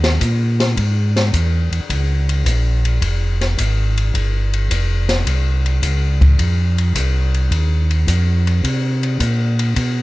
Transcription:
0.00 0.19 D#2 medium
0.00 snare medium
0.00 ride soft
0.21 0.75 A#2 medium
0.21 kick soft
0.21 hi-hat pedal medium
0.21 ride medium
0.60 snare soft
0.60 ride soft
0.77 1.31 G#2 medium
0.77 kick soft
0.77 ride medium
1.16 snare soft
1.16 ride soft
1.33 1.69 E2 medium
1.33 kick soft
1.33 hi-hat pedal soft
1.33 ride medium
1.71 1.80 E2 soft
1.71 ride soft
1.89 2.44 C#2 medium
1.89 kick soft
1.89 ride medium
2.29 ride soft
2.45 3.00 A#1 medium
2.45 kick soft
2.45 hi-hat pedal medium
2.45 ride medium
2.85 ride soft
3.01 3.56 F1 medium
3.01 kick soft
3.01 ride medium
3.41 snare soft
3.41 ride soft
3.58 4.12 G#1 medium
3.58 kick soft
3.58 hi-hat pedal medium
3.58 ride medium
3.98 ride soft
4.14 4.69 G1 medium
4.14 kick soft
4.14 ride medium
4.54 ride soft
4.70 5.25 F1 medium
4.70 kick soft
4.70 hi-hat pedal medium
4.70 ride medium
5.09 snare soft
5.09 ride soft
5.26 5.81 C2 medium
5.26 kick soft
5.26 ride medium
5.66 ride soft
5.82 6.37 C#2 medium
5.82 kick soft
5.82 hi-hat pedal soft
5.82 ride medium
6.21 kick medium
6.21 ride soft
6.38 6.93 F2 medium
6.38 kick soft
6.38 ride medium
6.78 ride soft
6.95 7.50 C2 medium
6.95 kick soft
6.95 hi-hat pedal medium
6.95 ride medium
7.34 ride soft
7.51 8.06 D#2 medium
7.51 kick soft
7.51 ride medium
7.91 ride soft
8.07 8.62 F2 medium
8.07 kick soft
8.07 hi-hat pedal medium
8.07 ride medium
8.47 ride soft
8.64 9.18 C3 medium
8.64 kick soft
8.64 ride medium
9.03 ride soft
9.19 9.74 A#2 medium
9.19 kick soft
9.19 hi-hat pedal medium
9.19 ride medium
9.59 ride soft
9.76 10.02 B2 medium
9.76 kick soft
9.76 ride medium

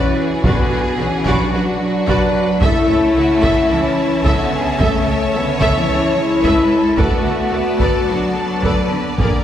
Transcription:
0.00 0.43 E3 medium
0.00 0.29 C#4 medium
0.00 0.15 F#4 medium
0.00 2.58 F#4 medium
0.00 0.15 B4 medium
0.00 0.18 B4 medium
0.00 2.62 B4 medium
0.00 0.15 D5 medium
0.00 2.58 F#5 medium
0.16 1.53 G#4 medium
0.44 0.52 B1 medium
0.44 0.99 D3 medium
0.44 0.99 B3 medium
0.44 0.70 F#4 medium
0.44 0.70 B4 medium
0.44 0.70 D5 medium
0.44 taiko loud
0.71 0.80 B1 soft
0.71 0.79 F#4 soft
0.71 0.79 B4 soft
0.71 0.79 D5 medium
0.98 1.07 B1 medium
0.98 1.40 E3 medium
0.98 1.40 C#4 medium
0.98 1.06 F#4 soft
0.98 1.07 B4 soft
0.98 1.07 D5 soft
1.25 1.34 B1 medium
1.25 1.51 F#4 medium
1.25 1.51 B4 medium
1.25 1.51 D5 medium
1.25 taiko medium
1.40 1.53 F#3 medium
1.40 1.53 D4 medium
1.52 1.61 B1 medium
1.52 1.80 F#3 medium
1.52 1.79 D4 medium
1.52 2.07 F#4 medium
1.52 1.62 F#4 medium
1.52 1.62 B4 soft
1.52 1.62 D5 soft
1.80 2.61 F#3 medium
1.80 2.60 D4 medium
2.07 2.15 B1 medium
2.07 2.33 F#4 medium
2.07 2.33 B4 medium
2.07 2.63 B4 medium
2.07 2.33 D5 medium
2.07 taiko medium
2.59 2.69 C#2 medium
2.59 3.70 A3 medium
2.59 6.97 C#4 medium
2.59 2.87 A4 medium
2.59 3.16 A4 medium
2.59 6.97 C#5 medium
2.59 6.97 E5 medium
2.59 2.87 E5 medium
2.59 2.88 E5 medium
2.59 6.97 A5 medium
2.59 taiko medium
2.64 3.72 E4 loud
2.88 2.96 C#2 medium
2.88 2.97 A4 medium
2.88 2.98 E5 medium
2.88 2.98 E5 soft
3.15 3.23 C#2 medium
3.15 3.72 F#4 medium
3.15 3.25 A4 medium
3.15 3.25 E5 medium
3.43 3.51 C#2 medium
3.43 3.68 A4 medium
3.43 3.68 E5 medium
3.43 3.69 E5 medium
3.43 taiko medium
3.69 3.78 C#2 medium
3.69 4.25 E3 medium
3.69 4.26 E4 medium
3.69 3.78 A4 medium
3.69 3.77 E5 medium
3.69 3.79 E5 medium
3.74 4.27 C#4 medium
4.23 4.31 C#2 medium
4.23 4.80 D3 medium
4.23 4.80 B3 loud
4.23 4.50 A4 medium
4.23 4.50 E5 medium
4.23 4.51 E5 medium
4.23 taiko medium
4.28 4.54 F#4 medium
4.55 4.81 G#4 medium
4.78 4.86 C#2 medium
4.78 5.35 C#3 medium
4.78 5.34 A3 medium
4.78 5.05 A4 medium
4.78 5.07 A4 medium
4.78 5.05 E5 medium
4.78 taiko loud
5.05 5.13 C#2 medium
5.05 5.15 A4 soft
5.05 6.41 C#5 medium
5.05 5.15 E5 medium
5.05 5.16 E5 soft
5.33 5.41 C#2 medium
5.33 5.75 D3 medium
5.33 5.76 B3 medium
5.33 5.42 A4 medium
5.33 5.42 E5 soft
5.33 5.43 E5 medium
5.60 5.68 C#2 medium
5.60 5.86 A4 medium
5.60 5.86 E5 medium
5.60 taiko medium
5.76 5.87 E3 medium
5.76 5.87 C#4 medium
5.88 5.96 C#2 medium
5.88 6.15 E3 medium
5.88 6.15 C#4 medium
5.88 5.96 A4 medium
5.88 5.96 E5 medium
5.88 5.97 E5 medium
6.15 6.98 G#3 medium
6.15 6.96 E4 loud
6.42 6.51 C#2 medium
6.42 6.68 A4 medium
6.42 6.71 B4 medium
6.42 6.68 E5 medium
6.42 6.69 E5 medium
6.42 taiko medium
6.70 6.98 A4 medium
6.96 7.05 D2 medium
6.96 8.04 A3 medium
6.96 7.52 F#4 medium
6.96 8.08 F#4 loud
6.96 7.23 A4 medium
6.96 7.23 B4 medium
6.96 7.23 D5 medium
6.96 9.15 A5 medium
6.96 taiko medium
7.01 9.20 B3 medium
7.01 9.20 A4 medium
7.01 9.44 D5 medium
7.24 7.32 D2 soft
7.24 7.32 A4 soft
7.24 7.32 B4 medium
7.24 7.34 D5 soft
7.51 7.59 D2 medium
7.51 7.59 A4 soft
7.51 7.59 B4 soft
7.51 7.80 B4 medium
7.51 7.62 D5 medium
7.78 7.87 D2 medium
7.78 8.04 A4 medium
7.78 8.08 A4 medium
7.78 8.04 B4 medium
7.78 8.06 D5 medium
7.78 taiko medium
8.05 8.15 D2 soft
8.05 8.89 F#3 medium
8.05 8.35 F#4 medium
8.05 8.13 A4 soft
8.05 8.13 B4 soft
8.05 8.16 D5 soft
8.10 8.92 D4 medium
8.35 8.62 A4 medium
8.61 8.70 D2 medium
8.61 8.88 A4 medium
8.61 8.87 B4 medium
8.61 9.18 B4 medium
8.61 taiko medium
8.65 8.90 D5 medium
8.90 9.17 D3 medium
8.90 9.19 B3 medium
9.18 9.26 A#1 medium
9.18 9.44 D3 medium
9.18 9.44 A#3 medium
9.18 9.44 G#4 medium
9.18 9.44 A#4 medium
9.18 9.44 D5 medium
9.18 9.44 G#5 medium
9.18 taiko medium

